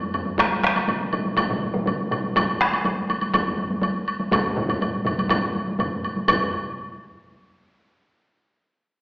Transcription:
0.14 taiko low-mid loud
0.14 high woodblock soft
0.25 taiko high medium
0.38 taiko rim medium
0.38 taiko loud
0.38 taiko high medium
0.38 high woodblock medium
0.63 taiko rim medium
0.63 taiko high medium
0.76 taiko high medium
0.76 high woodblock soft
0.88 taiko mid medium
0.88 taiko high medium
0.88 high woodblock soft
1.01 taiko mid medium
1.13 taiko mid medium
1.13 taiko high medium
1.13 high woodblock soft
1.25 taiko high medium
1.37 taiko loud
1.37 taiko high medium
1.37 high woodblock medium
1.50 taiko mid loud
1.63 taiko high medium
1.74 taiko mid loud
1.74 taiko high medium
1.86 taiko mid medium
1.86 taiko high medium
1.86 high woodblock soft
2.11 taiko mid loud
2.11 high woodblock soft
2.24 taiko high medium
2.36 taiko loud
2.36 taiko low-mid loud
2.36 taiko high medium
2.36 high woodblock medium
2.61 taiko rim medium
2.61 taiko high soft
2.73 taiko high medium
2.73 high woodblock soft
2.85 taiko low-mid loud
2.85 taiko high medium
2.85 high woodblock soft
3.10 taiko high medium
3.10 high woodblock soft
3.21 taiko high medium
3.21 high woodblock soft
3.34 taiko loud
3.34 taiko low-mid medium
3.34 taiko high medium
3.34 high woodblock medium
3.48 taiko low-mid medium
3.58 taiko low-mid medium
3.58 taiko high medium
3.70 taiko low-mid medium
3.70 taiko high medium
3.82 taiko high medium
3.82 high woodblock soft
4.08 high woodblock soft
4.20 taiko high medium
4.31 taiko loud
4.31 taiko low-mid medium
4.31 taiko mid medium
4.31 taiko high medium
4.31 high woodblock medium
4.56 taiko low-mid loud
4.56 taiko mid loud
4.56 taiko high medium
4.69 taiko low-mid loud
4.69 taiko mid medium
4.69 taiko high medium
4.69 high woodblock soft
4.81 taiko high medium
4.81 high woodblock soft
5.06 taiko low-mid medium
5.06 taiko mid medium
5.06 taiko high medium
5.06 high woodblock soft
5.18 taiko high medium
5.18 high woodblock soft
5.29 taiko loud
5.29 taiko low-mid loud
5.29 taiko mid medium
5.29 taiko high medium
5.29 high woodblock medium
5.55 taiko high medium
5.67 taiko high medium
5.79 taiko low-mid loud
5.79 taiko mid medium
5.79 taiko high medium
5.79 high woodblock soft
6.03 taiko high soft
6.03 high woodblock soft
6.16 taiko high medium
6.28 taiko medium
6.28 taiko low-mid loud
6.28 taiko mid loud
6.28 taiko high medium
6.28 high woodblock medium

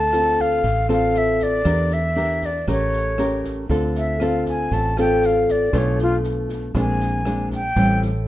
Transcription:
0.00 0.60 D2 loud
0.00 0.61 D3 medium
0.00 0.42 A5 loud
0.13 0.63 C4 medium
0.13 0.64 F4 medium
0.13 0.64 A4 medium
0.13 cross-stick medium
0.13 snare soft
0.38 0.90 F5 medium
0.38 kick soft
0.38 snare soft
0.64 1.62 A1 loud
0.64 1.63 A2 medium
0.64 kick medium
0.64 snare soft
0.89 1.61 C4 medium
0.89 1.61 F4 medium
0.89 1.62 A4 medium
0.89 1.19 F5 medium
0.89 cross-stick medium
0.89 snare soft
1.14 1.45 E5 medium
1.14 snare soft
1.40 1.95 D5 medium
1.40 kick soft
1.40 snare soft
1.65 2.63 E2 loud
1.65 2.65 E3 medium
1.65 1.98 D4 medium
1.65 1.98 G4 medium
1.65 1.99 A#4 medium
1.65 kick medium
1.65 cross-stick medium
1.65 snare soft
1.91 2.47 E5 medium
1.91 snare soft
2.16 2.49 D4 medium
2.16 2.49 G4 medium
2.16 2.49 A#4 medium
2.16 snare soft
2.42 2.69 D5 medium
2.42 kick soft
2.42 snare soft
2.67 3.65 A1 loud
2.67 3.67 A3 medium
2.67 3.14 C#4 medium
2.67 3.15 G4 medium
2.67 3.15 A#4 medium
2.67 3.42 C#5 medium
2.67 kick medium
2.67 cross-stick medium
2.67 snare soft
2.93 snare soft
3.18 3.67 C#4 medium
3.18 3.67 G4 medium
3.18 3.68 A#4 medium
3.18 cross-stick medium
3.18 snare soft
3.44 kick soft
3.44 snare soft
3.69 4.67 D2 loud
3.69 4.69 D3 medium
3.69 4.16 C4 medium
3.69 4.16 F4 medium
3.69 4.17 A4 medium
3.69 kick medium
3.69 snare soft
3.95 4.26 E5 medium
3.95 snare soft
4.20 4.93 C4 medium
4.20 4.93 F4 medium
4.20 4.93 A4 medium
4.20 cross-stick medium
4.20 snare soft
4.24 4.48 F5 medium
4.46 4.75 G#5 medium
4.46 kick soft
4.46 snare soft
4.71 5.69 A1 medium
4.71 5.71 A2 medium
4.71 4.98 A5 medium
4.71 kick medium
4.71 snare soft
4.97 5.70 C4 medium
4.97 5.70 F4 medium
4.97 5.70 A4 medium
4.97 5.27 G5 medium
4.97 cross-stick medium
4.97 snare soft
5.22 5.53 F5 medium
5.22 snare soft
5.48 5.79 D5 medium
5.48 kick soft
5.48 snare soft
5.73 6.71 B1 loud
5.73 6.72 B2 medium
5.73 6.71 A3 medium
5.73 6.71 D4 medium
5.73 6.71 F4 medium
5.73 kick medium
5.73 cross-stick medium
5.73 snare soft
5.78 6.01 C#5 medium
5.99 6.16 F4 medium
5.99 snare soft
6.24 snare soft
6.49 kick soft
6.49 snare soft
6.75 7.73 A#1 medium
6.75 7.74 A#2 medium
6.75 7.22 G#3 soft
6.75 7.22 C4 medium
6.75 7.22 D4 medium
6.75 7.49 G#5 medium
6.75 kick medium
6.75 cross-stick medium
6.75 snare soft
7.00 snare soft
7.25 7.60 G#3 medium
7.25 7.60 C4 medium
7.25 7.60 D4 medium
7.25 cross-stick medium
7.25 snare soft
7.51 8.00 G5 medium
7.51 kick soft
7.51 snare soft
7.76 8.28 A1 loud
7.76 8.28 A2 medium
7.76 8.09 G3 medium
7.76 8.10 C4 medium
7.76 8.10 E4 medium
7.76 kick medium
7.76 snare soft
8.02 snare soft

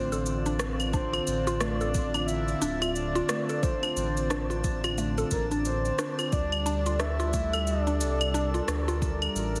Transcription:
0.00 1.20 A1 loud
0.00 6.32 D3 medium
0.00 0.10 A3 medium
0.00 6.32 C4 medium
0.00 1.06 D4 medium
0.00 9.60 D4 medium
0.00 8.51 F4 medium
0.00 0.56 C5 medium
0.00 9.60 D5 medium
0.12 0.44 A4 medium
0.12 cabasa soft
0.26 cabasa soft
0.46 0.59 D4 medium
0.46 cabasa soft
0.59 cross-stick medium
0.59 cabasa medium
0.80 cabasa soft
0.80 claves medium
0.93 1.12 D4 loud
0.93 1.62 C5 loud
0.93 kick loud
0.93 cabasa soft
1.07 9.60 D4 medium
1.13 1.26 F4 medium
1.13 cabasa soft
1.13 claves medium
1.27 2.54 A1 medium
1.27 cabasa medium
1.47 1.59 F4 loud
1.47 cabasa soft
1.60 1.79 A3 medium
1.60 2.26 D5 loud
1.60 cross-stick medium
1.60 cabasa soft
1.81 2.12 A4 medium
1.81 cabasa soft
1.94 kick loud
1.94 cabasa medium
2.14 2.27 D4 medium
2.14 cabasa soft
2.14 claves medium
2.27 2.91 E5 loud
2.27 cabasa soft
2.48 cabasa soft
2.62 3.22 D1 loud
2.62 2.81 D4 loud
2.62 cabasa medium
2.82 2.95 F4 medium
2.82 cabasa soft
2.82 claves medium
2.95 3.64 D5 loud
2.95 cabasa soft
3.15 3.28 F4 loud
3.15 cabasa soft
3.29 3.47 A3 medium
3.29 cross-stick medium
3.29 cabasa medium
3.49 3.81 A4 medium
3.49 cabasa soft
3.62 4.97 C5 loud
3.62 kick loud
3.62 cabasa soft
3.83 3.96 D4 medium
3.83 cabasa soft
3.83 claves medium
3.96 5.24 A1 medium
3.96 cabasa medium
4.17 cabasa soft
4.30 4.49 D4 loud
4.30 cross-stick medium
4.30 cabasa soft
4.50 4.63 F4 medium
4.50 cabasa soft
4.64 kick loud
4.64 cabasa medium
4.84 4.96 F4 loud
4.84 cabasa soft
4.84 claves medium
4.98 5.16 A3 medium
4.98 cabasa soft
5.18 5.50 A4 medium
5.18 cabasa soft
5.31 5.91 A1 medium
5.31 5.46 A#4 medium
5.31 kick medium
5.31 cabasa medium
5.51 5.64 D4 medium
5.51 cabasa soft
5.65 6.34 C5 loud
5.65 cabasa soft
5.85 cabasa soft
5.99 6.18 D4 loud
5.99 cross-stick medium
5.99 cabasa medium
6.19 6.32 F4 medium
6.19 cabasa soft
6.19 claves medium
6.32 8.02 D2 medium
6.32 9.60 G3 medium
6.32 7.01 D5 loud
6.32 kick loud
6.32 cabasa soft
6.52 cabasa soft
6.52 claves medium
6.66 6.85 D4 medium
6.66 9.60 A4 medium
6.66 cabasa medium
6.86 6.99 F4 medium
6.86 cabasa soft
7.00 7.18 D4 medium
7.00 7.68 E5 loud
7.00 cross-stick medium
7.00 cabasa soft
7.20 7.32 F4 medium
7.20 cabasa soft
7.33 7.52 A3 medium
7.33 kick medium
7.33 cabasa medium
7.53 7.85 A4 medium
7.53 cabasa soft
7.53 claves medium
7.67 9.02 D5 loud
7.67 cabasa soft
7.87 8.00 D4 medium
7.87 cabasa soft
8.01 8.61 C2 medium
8.01 cabasa medium
8.21 9.60 A#4 medium
8.21 cabasa soft
8.21 claves medium
8.34 8.53 D4 loud
8.34 cabasa soft
8.54 8.67 F4 medium
8.54 cabasa soft
8.68 9.28 D2 medium
8.68 8.86 D4 medium
8.68 cross-stick medium
8.68 cabasa medium
8.88 9.01 F4 loud
8.88 cabasa soft
9.02 kick loud
9.02 cabasa soft
9.22 cabasa soft
9.22 claves medium
9.35 9.60 A1 medium
9.35 cabasa medium
9.56 cabasa soft

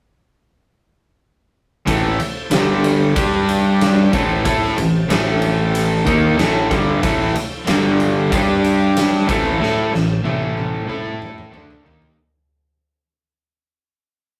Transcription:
1.87 2.18 A1 medium
1.87 2.18 A2 medium
1.87 2.19 E3 loud
1.87 2.19 A3 loud
1.87 2.52 E4 medium
1.87 2.52 A4 medium
1.87 2.52 C5 medium
1.87 2.52 A5 medium
1.87 kick medium
1.87 ride medium
2.19 muted distorted electric guitar stroke medium
2.19 muted overdriven electric guitar stroke medium
2.19 muted picked electric bass stroke soft
2.19 ride medium
2.51 3.12 G1 medium
2.51 3.15 G2 medium
2.51 3.15 D3 medium
2.51 3.14 G3 loud
2.51 4.12 G4 medium
2.51 4.12 D5 medium
2.51 4.12 G5 medium
2.51 snare loud
2.51 ride loud
2.84 ride medium
3.15 4.09 G2 medium
3.15 4.11 G3 medium
3.15 4.12 D4 medium
3.15 4.12 G4 loud
3.15 kick loud
3.15 ride loud
3.49 ride medium
3.81 snare loud
3.81 ride medium
4.13 4.43 A1 loud
4.13 4.44 A2 medium
4.13 4.44 E3 medium
4.13 4.43 A3 loud
4.13 6.68 C4 medium
4.13 6.69 A4 medium
4.13 6.69 C5 medium
4.13 6.68 A5 medium
4.13 kick loud
4.13 ride medium
4.44 4.76 A2 loud
4.44 4.76 A3 medium
4.44 4.76 E4 loud
4.44 4.76 A4 loud
4.44 kick loud
4.44 ride medium
4.63 snare soft
4.77 5.07 A1 medium
4.77 5.03 A2 medium
4.77 5.03 E3 medium
4.77 ride medium
5.08 6.02 A1 medium
5.08 6.05 A2 loud
5.08 6.05 E3 medium
5.08 6.05 A3 loud
5.08 snare loud
5.08 ride loud
5.42 ride medium
5.75 ride loud
6.05 6.37 D#2 loud
6.05 6.36 D#3 loud
6.05 6.37 A#3 medium
6.05 6.38 D#4 loud
6.05 kick loud
6.05 ride medium
6.37 6.68 A1 medium
6.37 6.69 A2 medium
6.37 6.69 E3 medium
6.37 6.70 A3 loud
6.37 snare loud
6.37 ride medium
6.70 7.01 G1 medium
6.70 7.02 G2 medium
6.70 7.02 D3 loud
6.70 7.02 G3 medium
6.70 7.66 E4 medium
6.70 7.67 A4 medium
6.70 7.67 C5 medium
6.70 kick medium
6.70 ride medium
7.03 7.33 A1 medium
7.03 7.34 A2 medium
7.03 7.34 E3 loud
7.03 7.35 A3 loud
7.03 kick loud
7.03 ride medium
7.21 snare soft
7.36 muted picked electric bass stroke soft
7.36 muted distorted electric guitar stroke medium
7.36 muted overdriven electric guitar stroke medium
7.36 ride medium
7.67 8.28 G1 medium
7.67 8.31 G2 loud
7.67 8.31 D3 loud
7.67 8.31 G3 loud
7.67 9.27 G4 medium
7.67 9.27 D5 medium
7.67 9.26 G5 medium
7.67 snare loud
7.67 ride loud
8.00 ride medium
8.32 9.25 G2 medium
8.32 9.27 G3 medium
8.32 9.28 D4 loud
8.32 9.28 G4 loud
8.32 kick loud
8.32 ride loud
8.64 ride medium
8.97 snare loud
8.97 ride loud
9.27 9.58 A1 loud
9.27 9.59 A2 medium
9.27 9.59 E3 loud
9.27 9.59 A3 medium
9.27 12.15 C4 medium
9.27 12.15 A4 medium
9.27 12.15 C5 medium
9.27 12.15 A5 medium
9.27 kick loud
9.27 ride medium
9.60 9.91 A2 medium
9.60 9.91 A3 medium
9.60 9.91 E4 medium
9.60 9.92 A4 loud
9.60 snare medium
9.93 10.23 A1 medium
9.93 10.18 A2 medium
9.93 10.19 E3 medium
9.93 snare medium
10.24 10.85 A1 medium
10.24 10.88 A2 loud
10.24 10.88 E3 loud
10.24 10.87 A3 loud
10.24 high tom medium
10.57 high tom medium
10.88 11.49 A2 medium
10.88 11.51 A3 medium
10.88 11.52 E4 loud
10.88 11.52 A4 loud
10.88 mid tom medium
11.06 mid tom medium
11.22 mid tom medium
11.38 mid tom medium
11.52 11.83 D2 medium
11.52 11.82 D3 medium
11.52 11.83 A3 medium
11.52 11.84 D4 loud
11.52 mid tom medium
11.70 floor tom medium
11.83 12.14 D#2 medium
11.83 12.15 D#3 medium
11.83 12.15 A#3 medium
11.83 12.16 D#4 loud
11.83 floor tom medium
12.02 floor tom loud

